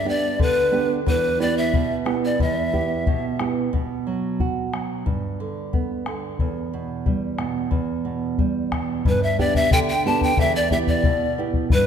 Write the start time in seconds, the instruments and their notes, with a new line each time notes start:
Already playing: nylon-string guitar G2, pan flute E5
0.05 nylon-string guitar B3 D4 G4, pan flute D5
0.39 nylon-string guitar D3, pan flute B4, bombo low
0.72 nylon-string guitar B3 D4 G4
1.06 nylon-string guitar E2, pan flute B4, bombo low
1.40 nylon-string guitar B3 E4 G4, pan flute D5
1.58 pan flute E5
1.74 nylon-string guitar B2, bombo low
2.05 nylon-string guitar B3 E4 G4, bombo rim
2.25 pan flute D5
2.40 nylon-string guitar E2, pan flute E5, bombo low
2.73 nylon-string guitar B3 E4 G4, bombo low
3.07 nylon-string guitar B2, bombo low
3.39 nylon-string guitar B3 E4 G4, bombo rim
3.73 nylon-string guitar B2, bombo low
4.07 nylon-string guitar F#3
4.40 nylon-string guitar F#4, bombo low
4.73 nylon-string guitar F#3, bombo rim
5.06 nylon-string guitar G2, bombo low
5.40 nylon-string guitar D3
5.73 nylon-string guitar B3, bombo low
6.06 nylon-string guitar D3, bombo rim
6.39 nylon-string guitar E2, bombo low
6.74 nylon-string guitar B2
7.06 nylon-string guitar G3, bombo low
7.38 nylon-string guitar B2, bombo rim
7.71 nylon-string guitar E2, bombo low
8.05 nylon-string guitar B2
8.38 nylon-string guitar G3, bombo low
8.72 nylon-string guitar B2, bombo rim, bombo low
9.05 nylon-string guitar G2, pan flute B4, bombo low
9.23 pan flute E5
9.39 nylon-string guitar B3 D4 G4, pan flute D5, bombo low
9.55 pan flute E5, bombo low
9.71 nylon-string guitar D3, pan flute G5, bombo low
9.90 pan flute G5
10.06 nylon-string guitar B3 D4 G4, pan flute A5
10.21 pan flute G5, bombo low
10.37 nylon-string guitar E2, pan flute E5, bombo low
10.56 pan flute D5
10.71 nylon-string guitar B3 E4 G4, pan flute E5, bombo low
10.87 pan flute D5, bombo low
11.04 nylon-string guitar B2, bombo low
11.38 nylon-string guitar B3 E4 G4
11.54 bombo low
11.70 nylon-string guitar G2, pan flute B4, bombo low